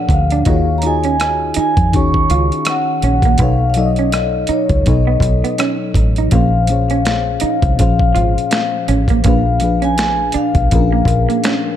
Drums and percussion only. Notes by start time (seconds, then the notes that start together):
0.09 kick, closed hi-hat
0.30 closed hi-hat
0.45 kick, closed hi-hat
0.82 closed hi-hat
1.04 closed hi-hat
1.20 cross-stick, closed hi-hat
1.54 closed hi-hat
1.77 kick, closed hi-hat
1.93 kick, closed hi-hat
2.14 kick
2.30 closed hi-hat
2.52 closed hi-hat
2.65 cross-stick, closed hi-hat
3.02 closed hi-hat
3.22 kick, closed hi-hat
3.38 kick, closed hi-hat
3.74 closed hi-hat
3.96 closed hi-hat
4.12 cross-stick, closed hi-hat
4.47 closed hi-hat
4.69 kick, closed hi-hat
4.86 kick, closed hi-hat
5.20 kick, closed hi-hat
5.45 closed hi-hat
5.58 cross-stick, closed hi-hat
5.94 kick, closed hi-hat
6.16 closed hi-hat
6.31 kick, closed hi-hat
6.67 closed hi-hat
6.90 closed hi-hat
7.05 finger snap, snare, closed hi-hat
7.40 closed hi-hat
7.62 kick, closed hi-hat
7.79 kick, closed hi-hat
7.99 kick
8.16 closed hi-hat
8.38 closed hi-hat
8.51 finger snap, snare, closed hi-hat
8.88 closed hi-hat
9.08 kick, closed hi-hat
9.24 kick, closed hi-hat
9.60 closed hi-hat
9.82 closed hi-hat
9.98 finger snap, snare, closed hi-hat
10.32 closed hi-hat
10.55 kick, closed hi-hat
10.71 kick, closed hi-hat
11.05 kick, closed hi-hat
11.30 closed hi-hat
11.44 finger snap, snare, closed hi-hat